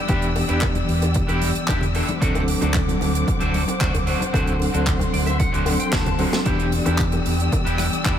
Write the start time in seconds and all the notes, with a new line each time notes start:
Already playing: D5 G5 E6
0.08 E2 E3 B3 D4 E4 G4, kick, closed hi-hat
0.22 closed hi-hat
0.36 open hi-hat, high bongo
0.48 E2 E3 B3 D4 E4 G4, closed hi-hat
0.61 kick, clap, closed hi-hat, high bongo
0.75 muted clean electric guitar stroke, closed hi-hat, high conga
0.89 E2, open hi-hat
1.02 closed hi-hat, high bongo
1.14 muted clean electric guitar stroke, kick, closed hi-hat
1.28 E2 D4 E4 G4, closed hi-hat, high bongo
1.42 open hi-hat, high conga
1.55 muted fingered electric bass stroke, closed hi-hat
1.68 E2 D4 E4 G4, kick, clap, closed hi-hat, high bongo
1.81 closed hi-hat, low conga
1.95 D4 E4 A4, open hi-hat, high bongo
2.08 closed hi-hat, high conga
2.21 D2 F#3 C4 D4 F#4 A4 C5 F#5 D6, kick, closed hi-hat
2.35 closed hi-hat, high bongo
2.48 open hi-hat
2.61 D2 F#3 C4 D4 F#4 A4, closed hi-hat, high bongo
2.74 kick, clap, closed hi-hat
2.87 muted clean electric guitar stroke, closed hi-hat, high conga
3.01 D2, open hi-hat, high bongo
3.15 closed hi-hat
3.27 muted clean electric guitar stroke, kick, closed hi-hat, high bongo
3.40 D2 C4 D4 F#4, closed hi-hat
3.54 open hi-hat, high conga
3.68 muted fingered electric bass stroke, closed hi-hat, high bongo
3.80 D2 C4 D4 F#4, kick, clap, closed hi-hat
3.94 closed hi-hat, high bongo, low conga
4.07 C4 D4 F#4, open hi-hat
4.21 closed hi-hat, high conga
4.33 D2 F#3 C4 D4 F#4 A4 C6, kick, closed hi-hat, high bongo
4.47 closed hi-hat
4.60 open hi-hat, high bongo
4.73 D2 F#3 C4 D4 F#4 A4, closed hi-hat
4.87 kick, clap, closed hi-hat
4.99 muted clean electric guitar stroke, closed hi-hat, high bongo, high conga
5.13 D2 D5, open hi-hat
5.26 E5, closed hi-hat, high bongo
5.39 F#5, muted clean electric guitar stroke, kick, closed hi-hat
5.52 D2 C4 D4 F#4, closed hi-hat
5.66 F#3 C4 D4 A4, open hi-hat, high bongo, high conga
5.80 G5, closed hi-hat
5.92 D2 C4 D4 F#4 A5, kick, snare, clap, closed hi-hat, high bongo
6.06 closed hi-hat, low conga
6.19 F#3 C4 D4 F#4 A4, open hi-hat
6.32 snare, closed hi-hat, high bongo, high conga
6.45 E2 E3 B3 D4 E4 G4 D5 G5 E6, kick, closed hi-hat, high bongo, cabasa
6.59 closed hi-hat
6.72 open hi-hat, cabasa
6.85 E2 E3 B3 D4 E4 G4, closed hi-hat, high bongo, cabasa
6.98 kick, clap, closed hi-hat, cabasa
7.12 muted clean electric guitar stroke, closed hi-hat, high bongo, high conga, cabasa
7.26 E2, open hi-hat, cabasa
7.39 closed hi-hat, cabasa
7.52 muted clean electric guitar stroke, kick, closed hi-hat, high bongo, cabasa
7.65 E2 D4 E4 G4, closed hi-hat
7.78 cross-stick, open hi-hat, high bongo, high conga, cabasa
7.93 muted fingered electric bass stroke, closed hi-hat, cabasa
8.04 E2 D4 E4 G4, kick, clap, closed hi-hat, cabasa